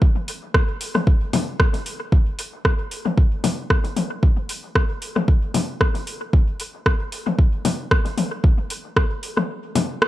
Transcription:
0.02 kick
0.28 open hi-hat
0.54 kick, cross-stick
0.81 open hi-hat
0.95 cross-stick, high tom
1.07 kick
1.33 open hi-hat, high tom, low conga
1.60 kick, cross-stick
1.74 open hi-hat
1.86 open hi-hat
2.12 kick
2.39 open hi-hat
2.65 kick, cross-stick
2.91 open hi-hat
3.06 high tom
3.18 kick
3.44 open hi-hat, high tom, low conga
3.70 kick, cross-stick
3.85 open hi-hat
3.96 open hi-hat, high tom
4.23 kick
4.49 open hi-hat
4.75 kick, cross-stick
5.02 open hi-hat
5.16 cross-stick, high tom
5.28 kick
5.54 open hi-hat, high tom, low conga
5.81 kick, cross-stick
5.95 open hi-hat
6.07 open hi-hat
6.33 kick
6.60 open hi-hat
6.86 kick, cross-stick
7.12 open hi-hat
7.27 high tom
7.39 kick
7.65 open hi-hat, high tom, low conga
7.91 kick, cross-stick
8.06 open hi-hat
8.18 open hi-hat, high tom
8.44 kick
8.70 open hi-hat
8.96 kick, cross-stick
9.23 open hi-hat
9.37 cross-stick, high tom
9.75 open hi-hat, high tom, low conga
10.02 cross-stick

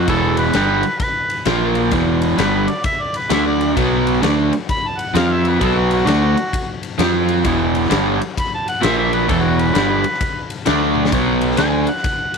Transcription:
0.07 E1 E2 B2 E3 A4, kick, ride
0.37 B4, ride
0.53 G1 G2 D3 G3, snare, ride
0.83 ride
1.00 B4, kick, ride
1.30 ride
1.45 A#1 A#2 F3 A#3, snare, ride
1.75 ride
1.91 E1 E2 B2 E3, kick, ride
2.22 ride
2.37 G1 G2 D3 G3 B4, snare, ride
2.68 D5, ride
2.84 E5, kick, ride
3.01 D5
3.14 B4, ride
3.30 D2 D3 A3 D4 E5, snare, ride
3.46 D5
3.61 ride
3.76 B1 B2 F#3 B3, kick, ride
4.07 ride
4.22 D2 D3 A3 D4, snare, ride
4.53 ride
4.69 B5, kick, ride
4.87 A5
4.99 F#5, ride
5.14 F2 F3 C4 F4 F5, snare, ride
5.33 E5
5.45 B4, ride
5.60 B1 B2 F#3 B3 A4, kick, ride
5.77 F#4
5.91 F#4, ride
6.06 D2 D3 A3 D4, snare, ride
6.37 ride
6.53 kick, ride
6.83 ride
6.98 F2 F3 C4 F4, snare, ride
7.29 ride
7.45 E1 E2 B2 E3, kick, ride
7.75 ride
7.85 snare
7.89 G1 G2 D3 G3, snare, ride
8.22 ride
8.37 B5, kick, ride
8.54 A5
8.68 F#5, ride
8.81 A#1 A#2 F3 A#3 E5, snare, ride
8.98 E5
9.13 B4, ride
9.28 E1 E2 B2 E3 A4, kick, ride
9.42 F#4
9.59 B4, ride
9.74 G1 G2 D3 G3, snare, ride
10.04 ride
10.14 snare
10.21 kick, ride
10.50 ride
10.66 D2 D3 A3 D4, snare, ride
10.95 high tom
11.05 snare
11.12 B1 B2 F#3 B3, kick, ride
11.41 ride
11.51 snare
11.57 D2 D3 A3 D4 G#5, snare, ride
11.87 F#5, ride
11.97 snare
12.04 kick, ride
12.34 ride

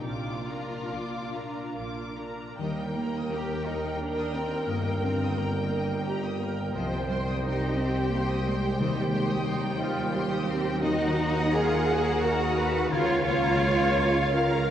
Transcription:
Already playing: A#2 A#3 F4
0.01 D5 D6
0.05 A#1 A#3 D4 F4
0.48 D4 A#4 A#5
0.91 A#1 A#3 F4 D6
1.34 D4 A#4 A#5
1.76 A#1 A#3 F4 D6
2.17 D4 A#4 A#5
2.58 D#2 D#3 G3 A#4 D#5 G5
2.79 G5
2.93 A#3 A#5
3.14 D#6
3.30 G4 A#5
3.52 G5
3.66 D#4 A#4 D#5
3.86 G5
3.99 D4 G4 A#5
4.19 D#6
4.34 A#3 C4 A#5
4.54 G5
4.67 G1 G2 A#3 D#5
4.88 G5
5.01 A#3 C4
5.05 A#5
5.22 D#6
5.35 A#3 G4 A#5
5.57 G5
5.70 A#4
5.74 D#5
5.91 G5
6.05 G4 A#5
6.24 D#6
6.40 A#3 A#4 A#5
6.58 G5
6.74 C2 C3 F3 C5 D#5 G5
6.92 G5
7.09 G3 C4 C6
7.27 D#6
7.44 D#4 G4 C6
7.62 G5
7.77 C4 C5 D#5
7.96 G5
8.11 A#3 G4 C6
8.29 D#6
8.46 G#3 C4 C6
8.64 G5
8.79 D#2 D#3 G3 G4 D#5
8.98 G5
9.13 G#3 C4 C6
9.31 D#6
9.46 G3 D#4 G4 C6
9.63 G5
9.79 F4 C5 D#5
9.97 G5
10.14 G4 C6
10.33 D#6
10.49 C4 C6
10.67 G5
10.82 D#3 D#4 F#4 A#4 D#5 F#5
11.00 F#5
11.18 A#3 A#5
11.37 D#6
11.54 F4 F#4 G#4 A#5
11.73 F#5
11.90 F#4 A#4 D#5
12.08 F#5
12.24 F#4 A#4 A#5
12.42 D#6
12.58 A#3 B4 A#5
12.74 F#5
12.90 C#2 C#3 F4 A#4 C#5 F5
13.08 C#5
13.25 A#3 F4 F5
13.43 A#5
13.60 F4 F5
13.78 C#5
13.95 A#4
14.14 C#5
14.30 F4 A#4 F5
14.51 A#5

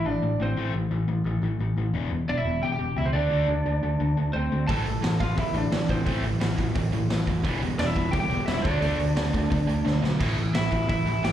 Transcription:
0.05 A1 A2 E3 D4 D5
0.22 A1 A2 E3
0.40 A1 A2 E3 C4 C5
0.57 A1 A2 E3 A3
0.74 A1 A2 E3
0.91 A1 A2 E3
1.08 A1 A2 E3
1.24 A1 A2 E3
1.42 A1 A2 E3
1.59 A1 A2 E3
1.77 A1 A2 E3
1.93 E1 E2 B2 E3
2.11 E1 E2 B2
2.28 E1 E2 B2 D4 D5
2.37 E4 E5
2.45 E1 E2 B2
2.62 E1 E2 B2 G4 G5
2.72 G4 G5
2.79 E1 E2 B2
2.97 C#2 E2 B2 E4 E5
3.06 C4 C5
3.13 D2 D3 A3 D4 D5
3.31 D2 D3 A3 D4
3.48 D2 D3 A3
3.66 D2 D3 A3
3.83 D2 D3 A3
4.00 D2 D3 A3
4.17 D2 D3 A3
4.33 D2 D3 A3 C4 C5
4.52 D2 D3 A3
4.67 A1 A2 E3 A3 A4 A5, kick, open hi-hat
4.86 A1 A2 E3, open hi-hat
5.03 A1 A2 E3, snare, open hi-hat
5.20 A1 A2 E3 F4 F5, kick, open hi-hat
5.37 A1 A2 E3 E4 E5, kick, open hi-hat
5.55 A1 A2 E3 D4 D5, open hi-hat
5.72 A1 A2 E3, snare, open hi-hat
5.89 A1 A2 E3 C4 C5, kick, open hi-hat
6.05 A1 A2 E3 A3, kick, open hi-hat
6.24 A1 A2 E3, open hi-hat
6.40 A1 A2 E3, snare, open hi-hat
6.58 A1 A2 E3, kick, open hi-hat
6.75 A1 A2 E3, kick, open hi-hat
6.92 A1 A2 E3, open hi-hat
7.09 A1 A2 E3, snare, open hi-hat
7.27 F1 A2 E3, kick, open hi-hat
7.44 E1 E2 B2 E3 G3 B3, kick, open hi-hat
7.62 E1 E2 B2 E3 G3, open hi-hat
7.79 E1 E2 B2 E3 G3 D4 D5, snare, open hi-hat
7.86 E4 E5
7.96 E1 E2 B2 E3 G3, kick, open hi-hat
8.11 E1 E2 B2 E3 G3 G4 G5, kick, open hi-hat
8.20 G4 G5
8.30 E1 E2 B2 E3 G3, open hi-hat
8.46 E1 E2 B2 E3 G3 E4 E5, snare, open hi-hat
8.54 E4 E5
8.63 D2 D3 A3 D4 D5, kick, open hi-hat
8.81 D2 D3 A3 D4, open hi-hat
8.98 D2 D3 A3, open hi-hat
9.16 D2 D3 A3, snare, open hi-hat
9.34 D2 D3 A3, kick, open hi-hat
9.51 D2 D3 A3, kick, open hi-hat
9.68 D2 D3 A3, open hi-hat
9.85 D2 D3 A3, snare
10.02 B1 D3 A3, snare
10.20 A1 A2 E3 A3, kick, open hi-hat, crash
10.37 A1 A2 E3, open hi-hat
10.54 A1 A2 E3 E4 E5, snare, open hi-hat
10.72 A1 A2 E3, kick, open hi-hat
10.89 A1 A2 E3 E4 E5, kick, open hi-hat
11.06 A1 A2 E3, open hi-hat
11.23 A1 A2 E3 G4 G5, snare, open hi-hat

